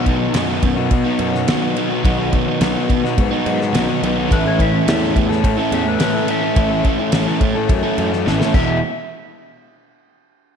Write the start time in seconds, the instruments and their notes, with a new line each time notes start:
Already playing: picked electric bass B1, overdriven electric guitar B2 F#3 B3 D#4 F#4
0.05 overdriven electric guitar D#3 F#3 B3 D#4, twelve-string acoustic guitar B3 D#4 F#4, kick, ride
0.19 overdriven electric guitar F#3 B3 D#4
0.34 picked electric bass F#2, overdriven electric guitar B2 D#3 F#3 B3 D#4 F#4, snare, ride
0.48 overdriven electric guitar B3 D#4 F#4
0.62 picked electric bass F#2, overdriven electric guitar D#3 F#3 B3 D#4, twelve-string acoustic guitar B3 D#4 F#4, muted overdriven electric guitar stroke, kick, ride
0.76 overdriven electric guitar B3 D#4 F#4, muted overdriven electric guitar stroke
0.91 picked electric bass B2, twelve-string acoustic guitar B2 F#3 B3 D#4 F#4, kick, ride
1.05 overdriven electric guitar F#3 B3 D#4 F#4
1.19 picked electric bass F#2, overdriven electric guitar F#3 B3 D#4 F#4, ride
1.34 muted overdriven electric guitar stroke, snare
1.47 overdriven electric guitar B2 D#3 F#3 B3 D#4 F#4, snare, ride
1.62 overdriven electric guitar B3 D#4 F#4
1.75 overdriven electric guitar D#3 F#3 B3 D#4 F#4, ride
1.89 overdriven electric guitar F#3 B3 D#4 F#4
2.03 picked electric bass B1, overdriven electric guitar B2 D#3 F#3 B3 D#4 F#4, kick, ride
2.18 overdriven electric guitar B3 D#4 F#4
2.32 overdriven electric guitar D#3 F#3 B3 D#4, twelve-string acoustic guitar B3 D#4 F#4, kick, ride
2.46 overdriven electric guitar F#3 B3 D#4
2.60 picked electric bass B1, overdriven electric guitar B2 D#3 F#3 B3 D#4 F#4, snare, ride
2.74 overdriven electric guitar B3 D#4 F#4
2.89 picked electric bass B2, overdriven electric guitar D#3 F#3 B3 D#4, twelve-string acoustic guitar B3 D#4 F#4, muted overdriven electric guitar stroke, kick, ride
3.03 overdriven electric guitar B3 D#4 F#4, muted overdriven electric guitar stroke, snare
3.18 picked electric bass G#2, twelve-string acoustic guitar B2 F#3 B3 D#4 F#4, kick, ride
3.31 overdriven electric guitar F#3 B3 D#4 F#4
3.46 picked electric bass G#2, overdriven electric guitar F#3 B3 D#4 F#4, ride
3.60 muted overdriven electric guitar stroke, snare
3.73 picked electric bass B1, overdriven electric guitar B2 D#3 F#3 B3 D#4 F#4, snare, ride
3.89 overdriven electric guitar B3 D#4 F#4
4.01 picked electric bass B1, overdriven electric guitar D#3 F#3 B3, ride
4.05 overdriven electric guitar D#4 F#4
4.18 overdriven electric guitar F#3 B3 D#4 F#4
4.31 picked electric bass A1, overdriven electric guitar A2 E3 A3 C#4 E4 A4, twelve-string acoustic guitar E4, electric slide guitar B4, kick, ride
4.45 overdriven electric guitar A3 C#4 A4, electric slide guitar C#5
4.57 overdriven electric guitar E3 A3 C#4 E4, twelve-string acoustic guitar C#4 E4, kick, ride
4.62 twelve-string acoustic guitar A3, electric slide guitar E5
4.72 overdriven electric guitar A3 C#4 E4
4.88 picked electric bass E2, overdriven electric guitar A2 E3 A3 C#4 E4 A4, twelve-string acoustic guitar E4, snare, ride
5.02 overdriven electric guitar A3 C#4 A4
5.14 picked electric bass E2, overdriven electric guitar E3 A3 C#4 E4, twelve-string acoustic guitar A3 C#4 E4, muted overdriven electric guitar stroke, kick, ride
5.29 overdriven electric guitar A3 C#4 A4, muted overdriven electric guitar stroke, snare
5.43 twelve-string acoustic guitar A2 E3 A3 C#4 E4, picked electric bass A2, kick, ride
5.57 overdriven electric guitar A3 C#4 E4 A4
5.71 picked electric bass E2, overdriven electric guitar E3 A3 C#4 A4, twelve-string acoustic guitar E4, electric slide guitar E5, ride
5.85 electric slide guitar B4, muted overdriven electric guitar stroke
6.00 overdriven electric guitar A2 E3 A3 C#4 E4 A4, twelve-string acoustic guitar E4, snare, ride
6.15 overdriven electric guitar A3 C#4 A4
6.27 overdriven electric guitar E3 A3 C#4 E4 A4, twelve-string acoustic guitar E4, electric slide guitar E5, ride
6.41 overdriven electric guitar A3 C#4 E4 A4
6.56 picked electric bass A1, overdriven electric guitar A2 E3 A3 C#4 E4 A4, twelve-string acoustic guitar E4, kick, ride
6.71 overdriven electric guitar A3 C#4 A4
6.83 overdriven electric guitar E3 A3 C#4 E4, twelve-string acoustic guitar A3 C#4 E4, kick, ride
6.99 overdriven electric guitar A3 C#4 E4
7.12 picked electric bass A1, overdriven electric guitar A2 E3 A3 C#4 E4 A4, twelve-string acoustic guitar E4, snare, ride
7.27 overdriven electric guitar A3 C#4 A4
7.40 picked electric bass A2, overdriven electric guitar E3 A3 C#4, twelve-string acoustic guitar A3 C#4 E4, muted overdriven electric guitar stroke, kick, ride
7.44 overdriven electric guitar E4
7.55 overdriven electric guitar A3 C#4 A4, muted overdriven electric guitar stroke
7.68 picked electric bass F#2, twelve-string acoustic guitar A2 E3 A3 C#4 E4, kick, ride
7.83 overdriven electric guitar A3 C#4 E4 A4
7.97 picked electric bass F#2, overdriven electric guitar E3 A3 C#4 A4, twelve-string acoustic guitar E4, ride
8.12 muted overdriven electric guitar stroke, snare
8.26 picked electric bass A1, overdriven electric guitar A2 E3 A3 C#4 E4 A4, twelve-string acoustic guitar E4, snare
8.40 overdriven electric guitar A3 C#4 A4, snare
8.54 picked electric bass E1, overdriven electric guitar E2 B2 E3 G#3 B3 E4, electric slide guitar E5, kick, crash